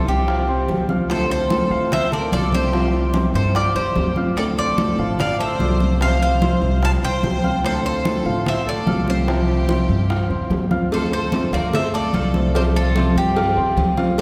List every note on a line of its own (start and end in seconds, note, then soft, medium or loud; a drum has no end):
0.00 0.26 C3 medium
0.00 0.26 F3 medium
0.00 0.26 G3 medium
0.00 0.20 C4 medium
0.00 0.26 C4 medium
0.00 0.27 F4 medium
0.00 0.20 C5 medium
0.00 0.20 C6 medium
0.07 0.64 C2 medium
0.07 0.85 C4 medium
0.07 0.86 G4 medium
0.07 high bongo soft
0.07 high conga soft
0.27 0.44 F4 medium
0.27 0.44 F5 medium
0.27 0.45 F6 medium
0.27 muted nylon-string guitar stroke medium
0.27 high bongo medium
0.27 high conga soft
0.48 0.82 C4 medium
0.48 0.82 C5 medium
0.48 0.82 C6 medium
0.48 high conga soft
0.68 1.65 D2 medium
0.68 0.88 F3 soft
0.68 0.88 G3 medium
0.68 0.88 C4 medium
0.68 0.87 F4 medium
0.68 high bongo soft
0.68 low bongo medium
0.68 high conga medium
0.88 1.08 F3 medium
0.88 1.09 G3 medium
0.88 1.09 C4 medium
0.88 1.08 F4 medium
0.88 1.23 F4 medium
0.88 1.23 F5 medium
0.88 1.23 F6 medium
0.88 high conga medium
1.09 1.49 D3 medium
1.09 1.50 A3 medium
1.09 1.50 C4 medium
1.09 1.50 F4 medium
1.09 1.29 A4 medium
1.09 1.30 C5 loud
1.09 high bongo medium
1.09 high conga soft
1.29 1.63 C4 medium
1.29 1.88 A4 medium
1.29 1.63 C5 medium
1.29 1.92 C5 loud
1.29 1.64 C6 medium
1.29 high bongo soft
1.29 high conga soft
1.50 1.90 D3 medium
1.50 1.90 A3 medium
1.50 1.91 C4 medium
1.50 1.91 F4 medium
1.50 high bongo medium
1.50 high conga medium
1.71 2.28 D2 medium
1.71 2.04 F3 medium
1.71 2.04 F4 medium
1.71 2.05 F5 medium
1.71 high bongo soft
1.71 high conga soft
1.91 2.11 C5 medium
1.91 2.13 E5 loud
1.91 muted nylon-string guitar stroke medium
1.91 high bongo medium
1.91 high conga soft
1.91 low conga medium
2.12 2.29 A3 medium
2.12 2.29 A4 medium
2.12 2.31 A#4 medium
2.12 2.32 D5 medium
2.12 2.29 A5 medium
2.12 high conga soft
2.12 low conga medium
2.32 3.29 C2 medium
2.32 2.52 D3 soft
2.32 2.52 A3 medium
2.32 2.52 C4 soft
2.32 2.66 F4 medium
2.32 2.51 F4 medium
2.32 2.52 A4 medium
2.32 2.52 D5 loud
2.32 2.66 F5 medium
2.32 2.66 F6 medium
2.32 high bongo soft
2.32 low bongo medium
2.32 high conga medium
2.52 2.73 A3 medium
2.52 2.73 C4 medium
2.52 2.72 F4 medium
2.52 3.10 G4 medium
2.52 3.11 C5 medium
2.52 high conga medium
2.72 3.12 C3 medium
2.72 3.07 F3 medium
2.72 3.13 F3 medium
2.72 3.13 G3 medium
2.72 3.14 C4 medium
2.72 3.07 F4 medium
2.72 3.14 F4 medium
2.72 3.07 F5 medium
2.72 high bongo medium
2.72 high conga soft
2.93 high bongo soft
2.93 high conga soft
3.13 3.53 C3 medium
3.13 3.54 F3 medium
3.13 3.54 G3 medium
3.13 3.48 C4 medium
3.13 3.54 C4 medium
3.13 3.54 F4 medium
3.13 3.48 C5 medium
3.13 3.48 C6 medium
3.13 high bongo medium
3.13 high conga medium
3.34 3.72 G2 medium
3.34 3.54 A4 medium
3.34 3.55 C5 medium
3.34 high bongo soft
3.34 high conga soft
3.54 3.72 F4 medium
3.54 3.74 G4 medium
3.54 3.75 D5 loud
3.54 3.72 F5 medium
3.54 3.72 F6 medium
3.54 muted nylon-string guitar stroke medium
3.54 high bongo medium
3.54 high conga soft
3.75 3.94 E2 medium
3.75 4.09 C4 medium
3.75 4.14 G4 medium
3.75 4.14 C5 medium
3.75 4.09 C5 medium
3.75 4.10 C6 medium
3.75 high conga soft
3.95 4.92 D2 medium
3.95 4.15 F3 soft
3.95 4.16 G3 soft
3.95 4.16 C4 medium
3.95 4.15 F4 medium
3.95 high bongo soft
3.95 low bongo medium
3.95 high conga medium
4.16 4.36 F3 medium
4.16 4.37 G3 medium
4.16 4.36 C4 medium
4.16 4.36 F4 medium
4.16 4.50 F4 medium
4.16 4.50 F5 medium
4.16 4.50 F6 medium
4.16 high conga medium
4.36 4.76 D3 medium
4.36 4.77 A3 medium
4.36 4.77 C4 medium
4.36 4.78 F4 medium
4.36 4.46 A4 medium
4.36 4.43 D5 medium
4.36 high bongo medium
4.36 high conga soft
4.57 4.91 C4 medium
4.57 5.15 A4 medium
4.57 4.91 C5 medium
4.57 5.20 D5 loud
4.57 4.91 C6 medium
4.57 high bongo soft
4.57 high conga soft
4.77 5.17 D3 medium
4.77 5.18 A3 medium
4.77 5.18 C4 medium
4.77 5.18 F4 medium
4.77 high bongo medium
4.77 high conga medium
4.98 5.56 A1 medium
4.98 5.32 F3 medium
4.98 5.32 F4 medium
4.98 5.32 F5 medium
4.98 high bongo soft
4.98 high conga soft
5.18 5.38 D5 medium
5.18 5.40 F5 loud
5.18 muted nylon-string guitar stroke medium
5.18 high bongo medium
5.18 high conga soft
5.18 low conga medium
5.39 5.56 A3 medium
5.39 5.56 A4 medium
5.39 5.97 C5 medium
5.39 6.02 E5 medium
5.39 5.56 A5 medium
5.39 high conga soft
5.59 6.56 C2 medium
5.59 5.79 D3 medium
5.59 5.79 A3 soft
5.59 5.79 C4 medium
5.59 5.93 F4 medium
5.59 5.78 F4 medium
5.59 5.94 D5 medium
5.59 5.94 D6 medium
5.59 high bongo soft
5.59 low bongo medium
5.59 high conga medium
5.79 6.00 A3 medium
5.79 6.00 C4 medium
5.79 6.00 F4 medium
5.79 high conga medium
6.00 6.40 C3 medium
6.00 6.40 F3 medium
6.00 6.34 F3 medium
6.00 6.41 G3 medium
6.00 6.41 C4 medium
6.00 6.34 F4 medium
6.00 6.41 F4 medium
6.00 6.20 C5 loud
6.00 6.35 F5 medium
6.00 6.21 F5 loud
6.00 high bongo medium
6.00 high conga soft
6.21 6.79 C5 medium
6.21 6.84 F5 loud
6.21 high bongo soft
6.21 high conga soft
6.41 6.80 C3 medium
6.41 6.81 F3 medium
6.41 6.81 G3 medium
6.41 6.75 C4 medium
6.41 6.81 C4 medium
6.41 6.81 F4 medium
6.41 6.75 C5 medium
6.41 6.75 C6 medium
6.41 high bongo medium
6.41 high conga medium
6.62 7.00 C2 medium
6.62 high bongo soft
6.62 high conga soft
6.82 6.99 F4 medium
6.82 6.99 F5 medium
6.82 6.92 F5 medium
6.82 6.90 A5 loud
6.82 7.00 F6 medium
6.82 high bongo medium
6.82 high conga soft
7.03 7.22 C2 medium
7.03 7.36 C4 medium
7.03 7.36 C5 medium
7.03 7.61 C5 medium
7.03 7.61 G5 loud
7.03 7.37 C6 medium
7.03 high conga soft
7.23 8.19 D2 medium
7.23 7.43 F3 soft
7.23 7.43 G3 medium
7.23 7.43 C4 medium
7.23 7.42 F4 medium
7.23 high bongo soft
7.23 low bongo medium
7.23 high conga medium
7.43 7.63 F3 medium
7.43 7.64 G3 medium
7.43 7.64 C4 medium
7.43 7.63 F4 medium
7.43 7.77 F4 medium
7.43 7.78 F5 medium
7.43 7.78 F6 medium
7.43 high conga medium
7.64 8.03 D3 medium
7.64 8.04 A3 medium
7.64 8.05 C4 medium
7.64 8.05 F4 medium
7.64 7.84 A4 medium
7.64 7.85 C5 loud
7.64 high bongo medium
7.64 high conga soft
7.84 8.18 C4 medium
7.84 8.43 A4 medium
7.84 8.18 C5 medium
7.84 8.48 C5 medium
7.84 8.19 C6 medium
7.84 high bongo soft
7.84 high conga soft
8.05 8.45 D3 medium
8.05 8.46 A3 medium
8.05 8.46 C4 medium
8.05 8.46 F4 medium
8.05 high bongo medium
8.05 high conga medium
8.25 8.83 A1 medium
8.25 8.59 F3 medium
8.25 8.59 F4 medium
8.25 8.59 F5 medium
8.25 high bongo soft
8.25 high conga soft
8.46 8.65 C5 medium
8.46 8.68 E5 loud
8.46 muted nylon-string guitar stroke medium
8.46 high bongo medium
8.46 high conga soft
8.46 low conga medium
8.66 8.83 A3 medium
8.66 8.83 A4 medium
8.66 9.05 A4 medium
8.66 9.09 D5 medium
8.66 8.84 A5 medium
8.66 high conga soft
8.86 9.83 C2 loud
8.86 9.07 D3 soft
8.86 9.07 A3 soft
8.86 9.07 C4 medium
8.86 9.20 F4 medium
8.86 9.06 F4 medium
8.86 9.20 F5 medium
8.86 9.21 F6 medium
8.86 high bongo soft
8.86 low bongo medium
8.86 high conga medium
9.07 9.28 A3 medium
9.07 9.27 C4 medium
9.07 9.27 F4 medium
9.07 10.47 G4 medium
9.07 10.48 C5 medium
9.07 high conga medium
9.27 9.67 C3 medium
9.27 9.61 F3 medium
9.27 9.67 F3 medium
9.27 9.68 G3 medium
9.27 9.68 C4 medium
9.27 9.61 F4 medium
9.27 9.69 F4 medium
9.27 9.61 F5 medium
9.27 high bongo medium
9.27 high conga soft
9.48 high bongo soft
9.48 high conga soft
9.68 10.08 C3 medium
9.68 10.09 F3 medium
9.68 10.09 G3 medium
9.68 10.02 C4 medium
9.68 10.09 C4 medium
9.68 10.09 F4 medium
9.68 10.02 C5 medium
9.68 10.02 C6 medium
9.68 high bongo medium
9.68 high conga medium
9.89 10.27 G2 medium
9.89 high bongo soft
9.89 high conga soft
10.09 10.26 F4 medium
10.09 10.26 F5 medium
10.09 10.26 F6 medium
10.09 muted nylon-string guitar stroke medium
10.09 high bongo medium
10.09 high conga soft
10.30 10.49 E2 medium
10.30 10.63 C4 medium
10.30 10.63 C5 medium
10.30 10.64 C6 medium
10.30 high conga soft
10.50 11.46 D2 medium
10.50 10.70 F3 medium
10.50 10.70 G3 soft
10.50 10.70 C4 medium
10.50 10.69 F4 medium
10.50 high bongo soft
10.50 low bongo medium
10.50 high conga medium
10.71 10.91 F3 medium
10.71 10.91 G3 medium
10.71 10.91 C4 medium
10.71 10.87 F4 medium
10.71 10.90 F4 medium
10.71 10.88 F5 medium
10.71 10.88 F6 medium
10.71 high conga medium
10.91 11.30 D3 medium
10.91 11.31 A3 medium
10.91 11.32 C4 medium
10.91 11.32 F4 medium
10.91 11.11 A4 medium
10.91 11.12 C5 medium
10.91 cowbell loud
10.91 high conga soft
11.11 11.45 C4 medium
11.11 11.50 A4 medium
11.11 11.45 C5 medium
11.11 11.51 C5 medium
11.11 11.45 C6 medium
11.11 high conga soft
11.32 11.72 D3 medium
11.32 11.72 A3 medium
11.32 11.72 C4 medium
11.32 11.72 F4 medium
11.32 cowbell medium
11.32 high conga medium
11.52 12.10 D2 medium
11.52 11.86 F3 medium
11.52 11.86 F4 medium
11.52 11.72 A#4 medium
11.52 11.72 D5 medium
11.52 11.86 F5 medium
11.52 cowbell medium
11.52 high conga soft
11.73 11.93 C5 medium
11.73 11.94 E5 medium
11.73 muted nylon-string guitar stroke medium
11.73 cowbell loud
11.73 high conga soft
11.73 low conga medium
11.93 12.10 A3 medium
11.93 12.10 A4 medium
11.93 12.51 A4 medium
11.93 12.56 D5 medium
11.93 12.10 A5 medium
11.93 cowbell medium
11.93 high conga soft
12.13 13.10 C2 loud
12.13 12.33 D3 medium
12.13 12.34 A3 medium
12.13 12.33 C4 medium
12.13 12.47 F4 medium
12.13 12.32 F4 medium
12.13 12.47 F5 medium
12.13 12.48 F6 medium
12.13 cowbell medium
12.13 high conga medium
12.34 12.54 A3 medium
12.34 12.54 C4 medium
12.34 12.54 F4 medium
12.34 high conga medium
12.54 12.94 C3 medium
12.54 12.94 F3 medium
12.54 12.88 F3 medium
12.54 12.94 G3 medium
12.54 12.95 C4 medium
12.54 12.88 F4 medium
12.54 12.95 F4 medium
12.54 12.64 G4 medium
12.54 12.61 C5 loud
12.54 12.88 F5 medium
12.54 cowbell loud
12.54 high conga soft
12.76 13.13 F4 medium
12.76 13.17 A4 medium
12.76 high conga soft
12.95 13.35 C3 medium
12.95 13.35 F3 medium
12.95 13.35 G3 medium
12.95 13.29 C4 medium
12.95 13.35 C4 medium
12.95 13.35 F4 medium
12.95 13.29 C5 medium
12.95 13.29 C6 medium
12.95 cowbell medium
12.95 high conga loud
13.16 13.54 G2 medium
13.16 13.94 C4 medium
13.16 13.94 G4 medium
13.16 high conga soft
13.36 13.53 F4 medium
13.36 13.53 F5 medium
13.36 13.53 F6 medium
13.36 muted nylon-string guitar stroke medium
13.36 cowbell loud
13.36 high conga soft
13.57 13.76 E2 medium
13.57 13.90 C4 medium
13.57 13.90 C5 medium
13.57 13.91 C6 medium
13.57 high conga soft
13.76 14.21 D2 loud
13.76 13.96 F3 medium
13.76 13.97 G3 medium
13.76 13.96 C4 medium
13.76 13.96 F4 medium
13.76 cowbell medium
13.76 high conga medium
13.97 14.17 F3 medium
13.97 14.17 G3 medium
13.97 14.17 C4 medium
13.97 14.17 F4 medium
13.97 14.21 F4 medium
13.97 14.21 F5 medium
13.97 14.21 F6 medium
13.97 cowbell medium
13.97 high conga medium
14.17 14.21 D3 medium
14.17 14.21 A3 medium
14.17 14.21 C4 medium
14.17 cowbell loud
14.17 high conga soft